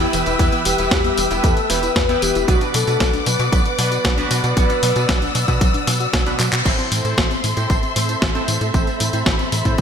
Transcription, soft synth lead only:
Already playing: E4
0.39 E4
0.66 G4
1.44 A4
1.70 B4
2.22 G4
2.49 F#4
2.75 A4
3.27 B4

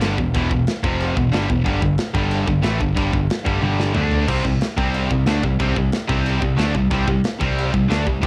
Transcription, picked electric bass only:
0.02 G1
0.18 E1
0.35 E1
0.51 E1
0.83 F1
1.17 E1
1.33 G1
1.50 E1
1.66 G1
1.82 G1
2.14 G1
2.48 G1
2.63 A1
2.81 G1
2.97 G1
3.13 G1
3.46 G1
3.62 G1
3.95 D2
4.28 C2
4.45 C2
4.78 C2
5.11 C2
5.26 D2
5.44 C2
5.60 C2
5.76 C2
6.09 C2
6.42 C2
6.59 D2
6.75 C2
6.91 C2
7.07 C2
7.41 C2
7.74 C2
7.90 D2
8.06 C2
8.23 C2

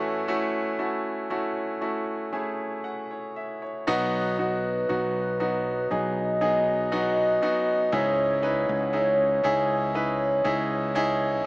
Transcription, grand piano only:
Already playing: A2 E3 A3 C#4 E4 F#4
0.28 A3 C#4 E4 F#4
0.79 A3 C#4 E4 F#4
1.30 A3 C#4 E4 F#4
1.81 A3 C#4 E4 F#4
2.33 A3 C#4 E4 G#4 G#5
2.84 F#5
3.11 C#5
3.36 E5
3.62 C#5
3.87 F#3 B3 D#4 F#4
4.38 F#3 B3 D#4 F#4
4.89 F#3 B3 D#4 F#4
5.40 F#3 B3 D#4 F#4
5.91 F#3 B3 D#4 G#4
6.41 F#3 B3 D#4 G#4
6.92 F#3 B3 D#4 F#4
7.42 F#3 B3 D#4 F#4
7.92 G#2 C#4 D#4 E4 G#4
8.42 C#4 D#4 E4 B4
8.93 C#4 D#4 E4 G#4
9.44 C#4 D#4 E4 G#4
9.94 C#4 D#4 E4 B4
10.44 C#4 D#4 E4 G#4
10.95 C#4 D#4 E4 G#4

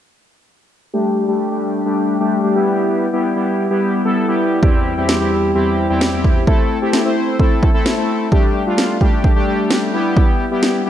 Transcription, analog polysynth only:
0.93 G3 A3 D4 G4
1.28 G3 A3 D4 G4
1.51 G3 A3 D4 G4
1.86 G3 A3 D4 G4
2.20 G3 A3 D4 G4
2.43 G3 A3 D4 G4
2.55 G3 B3 E4 G4
3.13 G3 B3 E4 G4
3.36 G3 B3 E4 G4
3.71 G3 B3 E4 G4
4.05 G3 B3 E4 A4
4.28 G3 B3 E4 G4
4.63 E2 G3 C4 E4 G4
4.98 E2 G3 C4 E4 G4
5.21 E2 G3 C4 E4 G4
5.55 E2 G3 C4 E4 G4
5.90 E2 G3 C4 E4 G4
6.13 E2 G3 C4 E4 G4
6.47 A3 C4 E4 A4
6.82 A3 C4 E4 G4
7.05 A3 C4 E4 C5
7.39 A3 C4 E4 A4
7.74 A3 C4 E4 A4
7.97 A3 C4 E4 A4
8.32 G3 A3 D4 G4
8.66 G3 A3 D4 F4
9.01 G3 A3 D4 G4
9.36 G3 A3 D4 G4
9.47 G3 A3 D4 G4
9.93 G3 B3 E4 G4
10.51 G3 B3 E4 G4
10.86 G3 B3 E4 G4

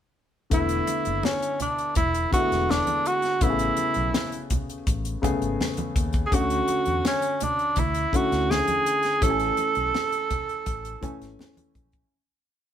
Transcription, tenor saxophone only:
0.54 E4
1.25 C#4
1.62 D4
1.97 E4
2.33 F#4
2.70 D4
3.07 F#4
3.43 E4
6.26 G#4
6.35 F#4
7.07 C#4
7.44 D4
7.79 E4
8.16 F#4
8.51 G#4
9.23 A4

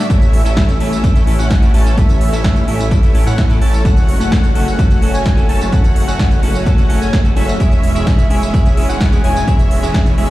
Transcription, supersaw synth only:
0.10 A3 C#4 E4 C#5
0.45 A3 C#4 E4 C#5 E5
0.80 A3 C#4 E4 C#5 E5
1.15 A3 C#4 E4 C#5 E5
1.39 A3 C#4 E4 C#5 F#5
1.74 A3 C#4 E4 C#5 A5
1.97 A3 C#4 E4 C#5 E5
2.33 A3 C#4 E4 C#5 E5
2.68 A3 C#4 E4 C#5 E5
3.03 A3 C#4 E4 C#5 E5
3.26 A3 C#4 E4 C#5 F#5
3.62 A3 C#4 E4 C#5 A5
3.85 A3 C#4 F#4 C#5 F#5
4.20 A3 C#4 F#4 C#5 F#5
4.55 A3 C#4 F#4 C#5 F#5
4.90 A3 C#4 F#4 C#5 F#5
5.14 A3 C#4 F#4 C#5 G#5
5.49 A3 C#4 F#4 C#5 A5
5.72 A3 C#4 F#4 F#5
6.08 A3 C#4 F#4 C#5 F#5
6.43 A3 C#4 F#4 C#5 F#5
6.78 A3 C#4 F#4 C#5 F#5
7.01 A3 C#4 F#4 C#5 G#5
7.36 A3 C#4 F#4 C#5 E5
7.60 G#3 C#4 E4 C#5 E5
7.95 G#3 C#4 E4 C#5 E5
8.30 G#3 C#4 E4 C#5 E5
8.65 G#3 C#4 E4 C#5 E5
8.89 G#3 C#4 E4 C#5 F#5
9.24 G#3 C#4 E4 C#5 G#5
9.47 G#3 C#4 E4 C#5 E5
9.83 G#3 C#4 E4 C#5 E5
10.18 G#3 C#4 E4 C#5 E5

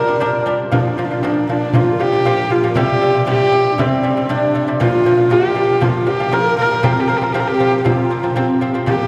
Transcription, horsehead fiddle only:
Already playing: A#4
0.72 D4
0.80 F4
0.87 D4
0.96 F4
1.05 D4
1.13 F4
1.22 D4
1.49 D4
1.75 F4
2.01 G4
2.52 F4
2.76 G4
3.28 G4
3.80 C4
4.30 D4
4.80 F4
5.32 G4
5.83 F4
6.08 G4
6.33 A#4
6.59 A#4
6.84 G4
6.92 A#4
7.00 G4
7.08 A#4
7.17 G4
7.23 A#4
7.32 G4
7.40 A#4
7.48 G4
7.78 G4
7.85 F4
8.88 G4

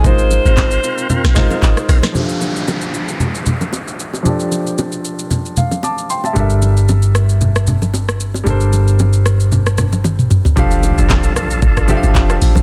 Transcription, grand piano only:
Already playing: G#3 D#4 F4 A#4 C5
0.03 G#3 D#4 F4 A#4 C5
1.35 G#3 D#4 F4 A#4 C5
2.12 F3 D4 G4
2.17 A4 E5
2.25 F5
4.23 F3 D4 G4
4.28 A4 D5
5.57 F5
5.84 A5 D6
6.10 G5 C6
6.25 E5 A5
6.33 G3 D4 A4
6.38 A#4 E5
8.44 G3 D4 A4
8.48 A#4 C5
10.56 F3 D4 G4 A4 F5
11.87 F3 D4 G4 A4 E5
11.97 F5

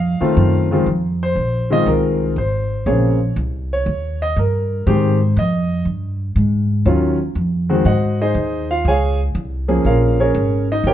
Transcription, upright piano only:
Already playing: F5
0.21 D#3 A3 C4 F4
0.71 D#3 G#3 C4 F4
1.23 C5
1.70 D#3 G#3 C4 F4 D#5
1.88 A#4
2.38 C5
2.86 C#3 A#3 C4 G#4 C#5
3.73 C#5
4.22 D#5
4.39 A#4
4.87 D#3 G#3 C4 G4 C5
5.39 D#5
6.85 D#3 F#3 C#4 F4
7.70 D#3 G#3 C4 F#4
7.86 F#4 C5 D#5 F#5
8.21 D#4 G#4 C5 D#5
8.71 F4 F5
8.88 G#4 C#5 F5 G#5
9.68 F3 A#3 C#4 G#4
9.86 F4 A#4 C#5 F5
10.20 C#4 G#4 A#4 C#5
10.72 D#4 D#5
10.87 G4 A#4 C#5 G5

